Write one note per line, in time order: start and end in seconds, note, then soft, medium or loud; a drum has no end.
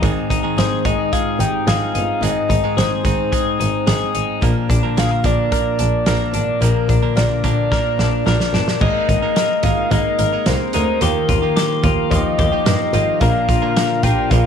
0.00 0.11 G#1 medium
0.00 2.21 G#2 medium
0.00 1.33 D#3 medium
0.00 0.43 G#3 medium
0.00 0.43 C4 medium
0.00 0.30 D#4 medium
0.00 kick loud
0.00 closed hi-hat medium
0.04 0.42 D#4 medium
0.04 0.42 G#4 medium
0.30 0.39 G#1 medium
0.30 0.84 D#4 medium
0.30 kick medium
0.30 closed hi-hat medium
0.43 0.83 G#2 soft
0.43 0.84 D#3 medium
0.43 0.84 G#3 medium
0.43 0.84 C4 medium
0.43 0.85 D#4 medium
0.43 0.85 G#4 medium
0.58 0.66 G#1 medium
0.58 1.12 G#4 medium
0.58 0.87 C5 medium
0.58 snare loud
0.58 closed hi-hat medium
0.84 0.93 G#1 medium
0.84 1.12 G#2 medium
0.84 1.12 D#3 medium
0.84 1.11 G#3 medium
0.84 1.12 C4 medium
0.84 1.39 D#4 medium
0.84 1.12 D#4 medium
0.84 1.13 G#4 medium
0.84 1.14 D#5 medium
0.84 kick medium
0.84 closed hi-hat medium
1.12 1.66 G#3 medium
1.12 1.67 C4 medium
1.12 1.68 D#4 medium
1.12 1.66 G#4 medium
1.12 1.68 G#4 medium
1.12 1.39 F5 loud
1.12 kick medium
1.12 closed hi-hat medium
1.40 1.48 G#1 medium
1.40 1.94 D#4 soft
1.40 1.69 G5 loud
1.40 closed hi-hat medium
1.67 1.75 G#1 medium
1.67 2.21 G#3 medium
1.67 2.21 C4 medium
1.67 2.23 D#4 medium
1.67 2.76 G#4 medium
1.67 2.23 G#4 medium
1.67 2.24 F5 loud
1.67 snare loud
1.67 closed hi-hat medium
1.95 2.03 G1 medium
1.95 2.48 D#4 medium
1.95 closed hi-hat medium
2.22 2.30 G#1 medium
2.22 4.42 G#2 medium
2.22 2.63 G#3 medium
2.22 2.63 C4 medium
2.22 2.63 D#4 medium
2.22 2.63 G#4 medium
2.22 2.77 D#5 loud
2.22 closed hi-hat medium
2.50 2.58 G#1 medium
2.50 3.04 D#4 medium
2.50 kick medium
2.50 closed hi-hat medium
2.64 3.03 G#2 soft
2.64 3.04 D#3 soft
2.64 3.04 G#3 medium
2.64 3.05 C4 medium
2.64 3.05 D#4 medium
2.64 3.05 G#4 medium
2.77 2.86 G#1 medium
2.77 3.31 G#4 medium
2.77 4.11 C5 medium
2.77 snare loud
2.77 closed hi-hat medium
3.05 3.13 G#1 medium
3.05 3.32 G#2 medium
3.05 3.32 D#3 medium
3.05 3.31 G#3 medium
3.05 3.32 C4 medium
3.05 3.59 D#4 medium
3.05 3.32 D#4 medium
3.05 3.33 G#4 medium
3.05 kick medium
3.05 closed hi-hat medium
3.32 3.85 G#3 medium
3.32 3.86 C4 medium
3.32 3.87 D#4 medium
3.32 3.86 G#4 medium
3.32 3.88 G#4 medium
3.32 kick medium
3.32 closed hi-hat medium
3.60 3.68 G#1 medium
3.60 4.14 D#4 medium
3.60 closed hi-hat medium
3.86 3.96 G#1 medium
3.86 4.41 G#3 medium
3.86 4.42 C4 medium
3.86 4.43 D#4 medium
3.86 4.48 G#4 medium
3.86 4.43 G#4 medium
3.86 snare loud
3.86 closed hi-hat medium
4.15 4.23 G#1 medium
4.15 4.48 D#4 medium
4.15 closed hi-hat medium
4.41 4.50 A#1 medium
4.41 6.60 A#2 medium
4.41 4.83 F3 medium
4.41 4.83 A#3 medium
4.41 4.82 D4 medium
4.41 4.82 A#4 medium
4.41 kick loud
4.41 closed hi-hat medium
4.70 4.78 A#1 loud
4.70 5.24 D4 medium
4.70 kick medium
4.70 closed hi-hat medium
4.83 5.23 A#2 medium
4.83 5.23 D3 medium
4.83 5.24 F3 medium
4.83 5.24 A#3 medium
4.83 5.24 D4 medium
4.83 5.24 A#4 medium
4.97 5.05 A#1 medium
4.97 5.11 G#4 medium
4.97 5.27 F5 loud
4.97 snare loud
4.97 closed hi-hat medium
5.11 5.51 A#4 medium
5.24 5.32 A#1 medium
5.24 5.52 A#2 medium
5.24 5.52 D3 medium
5.24 5.50 F3 medium
5.24 5.51 A#3 medium
5.24 5.78 D4 medium
5.24 5.52 D4 medium
5.24 5.52 A#4 medium
5.24 6.63 D5 loud
5.24 kick medium
5.24 closed hi-hat medium
5.51 6.05 F3 medium
5.51 6.07 A#3 medium
5.51 6.07 D4 medium
5.51 6.07 A#4 medium
5.51 6.08 A#4 medium
5.51 kick medium
5.51 closed hi-hat medium
5.79 5.87 A#1 medium
5.79 6.33 D4 medium
5.79 closed hi-hat medium
6.06 6.15 A#1 medium
6.06 6.60 F3 medium
6.06 6.62 A#3 medium
6.06 6.61 D4 medium
6.06 7.16 A#4 medium
6.06 6.63 A#4 medium
6.06 snare loud
6.06 closed hi-hat medium
6.34 6.42 G#1 medium
6.34 6.88 D4 medium
6.34 closed hi-hat medium
6.61 6.69 A#1 loud
6.61 8.82 A#2 medium
6.61 7.02 F3 medium
6.61 7.02 A#3 soft
6.61 7.02 D4 medium
6.61 7.18 A#4 medium
6.61 7.01 A#4 medium
6.61 closed hi-hat medium
6.89 6.97 A#1 medium
6.89 7.43 D4 medium
6.89 kick medium
6.89 closed hi-hat medium
7.03 7.42 A#2 soft
7.03 7.43 D3 medium
7.03 7.43 F3 medium
7.03 7.43 A#3 medium
7.03 7.43 D4 medium
7.03 7.44 A#4 medium
7.17 7.25 A#1 medium
7.17 7.71 A#4 medium
7.17 8.26 D5 medium
7.17 snare loud
7.17 closed hi-hat medium
7.43 7.52 A#1 medium
7.43 7.71 A#2 medium
7.43 7.71 D3 medium
7.43 7.69 F3 medium
7.43 7.70 A#3 medium
7.43 7.98 D4 medium
7.43 7.71 D4 medium
7.43 7.72 A#4 medium
7.43 kick medium
7.43 closed hi-hat medium
7.70 8.25 F3 medium
7.70 8.26 A#3 medium
7.70 8.26 D4 medium
7.70 8.26 A#4 medium
7.70 8.28 A#4 medium
7.70 kick medium
7.70 snare soft
7.98 8.06 A#1 medium
7.98 8.53 D4 medium
7.98 snare medium
8.26 8.34 A#1 loud
8.26 8.80 F3 medium
8.26 8.81 A#3 medium
8.26 8.82 D4 medium
8.26 8.81 A#4 medium
8.26 8.83 A#4 medium
8.26 8.83 D5 medium
8.26 snare medium
8.40 snare medium
8.54 8.62 G1 medium
8.54 8.87 D4 medium
8.54 snare medium
8.68 snare medium
8.81 8.89 G#1 medium
8.81 9.22 G#3 medium
8.81 11.01 G#3 medium
8.81 9.22 A#3 medium
8.81 9.22 D#4 medium
8.81 9.36 A#4 medium
8.81 9.21 A#4 medium
8.81 9.65 D#5 loud
8.81 kick loud
8.81 crash medium
9.09 9.17 G#1 medium
9.09 9.64 D#4 medium
9.09 kick medium
9.09 closed hi-hat medium
9.22 9.62 G#3 medium
9.22 9.63 A#3 medium
9.22 9.64 D#4 medium
9.22 9.64 A#4 medium
9.36 10.19 A#4 medium
9.36 snare loud
9.36 closed hi-hat medium
9.63 9.72 G#1 medium
9.63 9.89 G#3 medium
9.63 9.90 A#3 medium
9.63 10.74 D#4 medium
9.63 9.91 D#4 medium
9.63 9.92 A#4 medium
9.63 9.93 F5 medium
9.63 kick medium
9.63 closed hi-hat medium
9.91 10.00 G#1 loud
9.91 10.32 G#3 medium
9.91 10.46 A#3 medium
9.91 10.32 A#3 medium
9.91 10.32 D#4 medium
9.91 10.31 A#4 medium
9.91 10.48 D#5 medium
9.91 kick medium
9.91 closed hi-hat medium
10.19 10.27 G#1 medium
10.19 11.02 A#4 medium
10.19 closed hi-hat medium
10.33 10.73 G#3 medium
10.33 10.73 A#3 medium
10.33 10.74 D#4 medium
10.33 10.74 A#4 medium
10.46 10.55 C2 medium
10.46 12.66 A#3 medium
10.46 11.02 C5 medium
10.46 snare loud
10.46 closed hi-hat medium
10.73 10.82 D2 medium
10.73 11.01 G#3 medium
10.73 11.01 A#3 medium
10.73 11.28 D#4 medium
10.73 11.02 D#4 medium
10.73 11.02 A#4 medium
10.73 closed hi-hat medium
11.01 11.10 D#2 loud
11.01 13.22 D#3 medium
11.01 11.43 F3 medium
11.01 11.42 A#3 medium
11.01 11.42 F4 medium
11.01 11.55 G4 medium
11.01 11.41 G4 medium
11.01 11.83 A#4 loud
11.01 closed hi-hat medium
11.29 11.37 D#2 medium
11.29 11.84 F4 medium
11.29 kick medium
11.29 closed hi-hat medium
11.42 11.85 D#3 medium
11.42 11.81 F3 medium
11.42 11.82 A#3 medium
11.42 11.83 F4 medium
11.42 11.84 G4 medium
11.56 12.37 G4 medium
11.56 snare loud
11.56 closed hi-hat medium
11.83 11.92 D#2 medium
11.83 12.09 F3 medium
11.83 12.10 A#3 medium
11.83 12.93 F4 medium
11.83 12.11 F4 medium
11.83 12.12 G4 medium
11.83 12.12 A#4 medium
11.83 kick medium
11.83 closed hi-hat medium
12.10 12.19 D#2 loud
12.10 12.52 F3 medium
12.10 14.31 F3 medium
12.10 12.52 A#3 medium
12.10 12.51 F4 medium
12.10 12.51 G4 medium
12.10 12.65 D#5 medium
12.10 kick medium
12.10 closed hi-hat medium
12.39 12.47 D#2 medium
12.39 13.21 G4 medium
12.39 kick medium
12.39 closed hi-hat medium
12.52 12.92 D#3 medium
12.52 12.93 F3 medium
12.52 12.93 A#3 medium
12.52 12.94 F4 medium
12.52 12.94 G4 medium
12.66 12.74 G2 medium
12.66 14.46 A#3 medium
12.66 13.22 D#5 medium
12.66 snare loud
12.66 closed hi-hat loud
12.93 13.02 G#1 medium
12.93 13.21 D#3 medium
12.93 13.19 F3 medium
12.93 13.20 A#3 medium
12.93 13.48 F4 soft
12.93 13.22 F4 medium
12.93 13.22 G4 medium
12.93 closed hi-hat medium
13.20 13.29 A#1 loud
13.20 14.46 A#2 medium
13.20 13.62 F3 medium
13.20 13.62 A#3 medium
13.20 14.46 D4 medium
13.20 13.61 D4 medium
13.20 14.46 F4 medium
13.20 14.46 A#4 medium
13.20 13.75 A#4 medium
13.20 13.61 A#4 medium
13.20 14.05 F5 loud
13.20 kick loud
13.20 closed hi-hat medium
13.49 13.57 A#1 medium
13.49 14.03 F4 medium
13.49 kick medium
13.49 closed hi-hat medium
13.62 14.04 A#2 medium
13.62 14.04 D3 medium
13.62 14.02 F3 medium
13.62 14.03 A#3 medium
13.62 14.04 D4 medium
13.62 14.04 A#4 medium
13.76 14.46 A#4 medium
13.76 snare loud
13.76 closed hi-hat medium
14.03 14.11 A#1 medium
14.03 14.30 F3 medium
14.03 14.31 A#3 medium
14.03 14.31 D4 medium
14.03 14.46 F4 medium
14.03 14.32 A#4 medium
14.03 14.30 G5 loud
14.03 kick medium
14.03 closed hi-hat medium
14.30 14.39 A#1 loud
14.30 14.46 F3 medium
14.30 14.46 A#3 medium
14.30 14.46 D4 medium
14.30 14.46 A#4 medium
14.30 14.46 F5 loud
14.30 kick medium
14.30 closed hi-hat medium